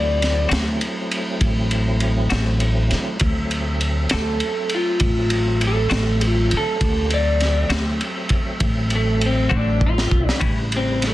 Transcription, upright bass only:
Already playing: D2
0.51 D2
1.41 A1
2.31 A1
2.92 D3
3.21 D2
4.13 D2
5.01 A1
5.91 A1
6.52 D3
6.82 D2
7.69 D2
8.61 A1
9.52 A1
10.12 B1
10.41 A1

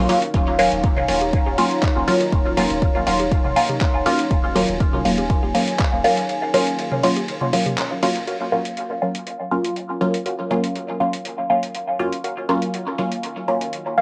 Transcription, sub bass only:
0.34 D#1
0.72 D#1
1.08 D#1
1.46 D#1
1.96 D#1
2.33 D#1
2.70 D#1
3.07 D#1
3.45 D#1
3.94 D#1
4.31 D#1
4.69 D#1
5.05 D#1
5.43 D#1
5.93 D#1

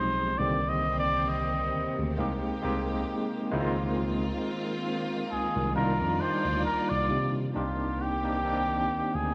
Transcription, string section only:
Already playing: A#2 G#3 D#4 G4
0.37 C3 G3 A#3 C4
2.17 G#3 G4
3.51 D#3 C4 F4
5.75 F4 D5
7.54 D#3 A#3 C4 G4

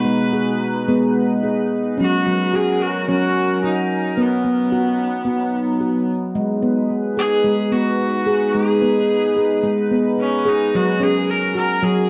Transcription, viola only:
Already playing: B4
2.00 F#4
2.55 G#4
2.82 F#4
3.09 F#4
3.65 D#4
4.21 B3
7.18 G#4
7.72 F#4
8.53 G#4
10.20 C#4
10.48 D#4
10.76 F#4
11.03 G#4
11.30 A#4
11.56 A#4
11.83 G#4

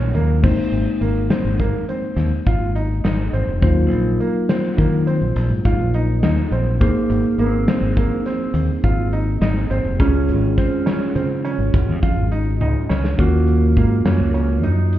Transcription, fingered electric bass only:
Already playing: A#1
0.14 D#2
0.44 G#1
0.72 G#1
1.01 G#1
1.45 G#1
2.16 D#2
2.46 G#1
3.04 G#1
3.33 G#1
3.47 F1
3.62 D#2
3.90 A#1
4.78 D#3
5.21 A#1
5.36 A#1
5.50 G#2
5.65 G#2
5.79 A#1
6.23 D#2
6.51 A#1
6.81 G#1
7.10 G#1
7.38 G#1
7.81 G#1
8.54 D#2
8.84 G#1
9.41 G#1
9.70 G#1
9.84 F1
10.00 C#2
10.28 G#1
11.16 C#3
11.58 G#1
11.74 G#1
11.88 F2
12.03 F2
12.17 G#1
12.61 C#2
12.90 C#2
13.19 D#2
13.77 G#2
14.05 F#2
14.20 C#2
14.63 F#2

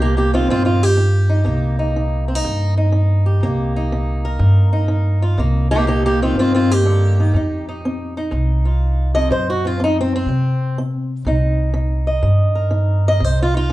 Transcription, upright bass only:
Already playing: C2
0.47 G2
1.45 C2
2.44 G2
3.40 C2
4.39 G2
5.37 C2
6.35 G2
7.34 F2
8.32 C2
9.30 F#2
10.26 C3
11.25 C2
12.22 G2
13.20 C2

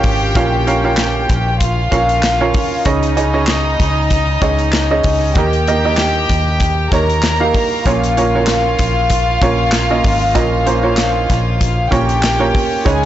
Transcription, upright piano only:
Already playing: C#4 F4 A#4 C#5 F5
0.36 A#2 C#4 F4 A#4 C#5 F5
0.67 C#4 F4 A#4 C#5 F5
0.84 C#4 F4 A#4 C#5 F5
1.92 C#4 F4 A#4 C#5 F5
2.41 C#4 F4 A#4 C#5 F5
2.85 C#3 C#4 D#4 G#4 C#5 D#5
3.17 C#4 D#4 G#4 C#5 D#5
3.34 C#4 D#4 G#4 C#5 D#5
4.42 C#4 D#4 G#4 C#5 D#5
4.91 C#4 D#4 G#4 C#5 D#5
5.36 D#3 A#3 D#4 G4 A#4 D#5
5.68 A#3 D#4 G4 A#4 D#5
5.85 A#3 D#4 G4 A#4 D#5
6.92 A#3 D#4 G4 A#4 C#5
7.40 A#3 D#4 G4 A#4 F5
7.86 A#2 A#3 C#4 F4 A#4 C#5
8.17 A#3 C#4 F4 A#4 C#5
8.35 A#3 C#4 F4 A#4 C#5
9.41 A#3 C#4 F4 A#4 C#5
9.90 A#3 C#4 F4 A#4 D#5
10.34 A#2 A#3 C#4 F4 A#4 D#5
10.66 A#3 C#4 F4 A#4 C5
10.83 A#3 C#4 F4 A#4 C#5
11.91 A#3 C#4 F4 A#4 C#5
12.39 A#3 C#4 F4 A#4 C#5
12.85 C#3 G#3 C#4 D#4 G#4 C#5

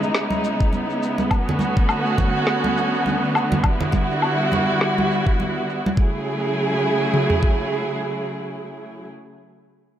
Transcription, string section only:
Already playing: C#3 G#3 B3 D#4 E4
1.30 D3 A3 C#4 F#4
3.64 G3 E4 F#4
5.98 C#3 F#3 A3 E4 G#4

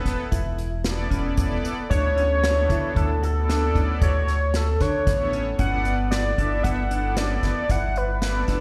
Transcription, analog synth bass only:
0.05 E1
0.32 E1
1.11 E1
1.38 E1
1.91 D2
2.69 D3
2.96 D2
3.75 D2
4.01 D2
4.80 D3
5.07 A1
5.59 G1
6.38 G1
6.64 G1
7.43 G1
7.69 G1
8.48 G1

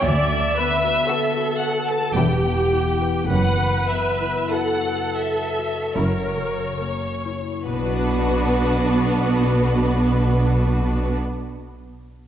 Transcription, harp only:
Already playing: F#3 F#4 F#5
0.07 D3
0.32 D4
0.58 B3
0.84 F#4
1.09 B4
1.37 F#4
1.63 F#5
1.90 B4
2.17 E3
2.45 B3
2.72 E4
3.01 B4
3.30 F#2
3.60 C#3
3.89 B3
4.21 E4
4.53 F#4
4.86 B4
5.22 E5
5.58 F#4
5.96 F#2
6.36 C#3
6.80 A#3
7.25 E4
7.65 B2
7.73 B3
7.80 D4
7.86 F#4
7.94 D5

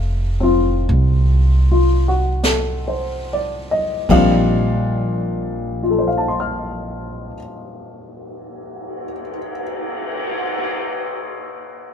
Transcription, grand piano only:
Already playing: F#3 A3 C4 D#4 A4 F5
0.40 C4 F4
1.71 F4
2.08 F#4
2.44 A4
2.88 C5
3.33 D5
3.71 D#5
4.09 A#2 F3 G3 C4 D4 F5
5.83 F4
5.90 A4
5.99 C5
6.08 F5
6.18 A5
6.28 C6
6.40 F6

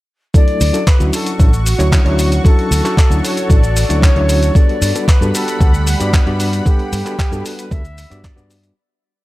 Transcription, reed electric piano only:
0.34 F#3 A3 D4 E4 A4
0.73 F#3 C#4 D4 E4 A4
0.99 F#3 C#4 D4 E4 F#4
1.39 F#3 C#4 D4 E4 A4
1.78 F#3 C#4 D4 E4 C#5
2.05 F#3 C#4 D4 E4 C#5
2.44 F#3 C#4 D4 E4 A4
2.84 F#3 C#4 D4 E4 A4
3.10 F#3 C#4 D4 E4 F#4
3.49 F#3 C#4 D4 E4 A4
3.90 F#3 C#4 D4 E4 C#5
4.16 F#3 C#4 D4 E4 C#5
4.55 G3 B3 D4 F#4 A4
4.95 G3 B3 D4 F#4 A4
5.21 G3 B3 D4 F#4 A4
5.61 G3 B3 D4 F#4 A4
6.00 G3 B3 D4 F#4 D5
6.26 G3 B3 D4 F#4 D5
6.65 G3 B3 D4 A4 F#5
7.05 G3 B3 D4 F#4 A4
7.32 G3 B3 D4 F#4 A4
7.71 G3 B3 D4 F#4 A4
8.10 G3 B3 D4 F#4 D5
8.36 G3 B3 D4 F#4 D5

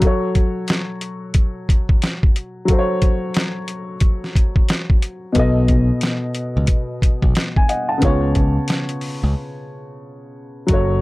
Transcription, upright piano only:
0.00 F#3 F#4
0.04 A4 C#5
2.65 F#3 F#4
2.70 A4 C5
2.79 C#5
5.32 B2 B3
5.37 A4 D#5
7.57 G#5
7.69 D#5 F#5
7.89 F#5 A5
7.98 C#3 B3
8.02 F4 C#5
10.66 F#3 F#4
10.71 A4 C#5

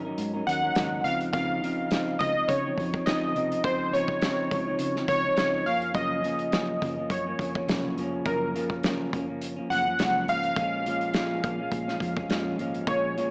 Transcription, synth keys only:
0.47 F#5
1.04 F5
1.33 F5
2.19 D#5
2.48 C#5
3.06 D#5
3.65 C5
3.93 C#5
5.08 C#5
5.66 F5
5.95 D#5
7.11 C#5
8.26 A#4
9.70 F#5
10.29 F5
12.88 C#5

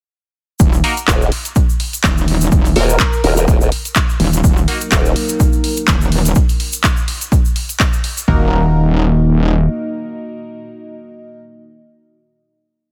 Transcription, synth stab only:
0.84 A#3 D#4 F#4 A#4
2.76 A#3 D#4 F#4 A#4
4.68 A#3 D#4 F#4 A#4
8.28 A#3 D#4 F#4 A#4

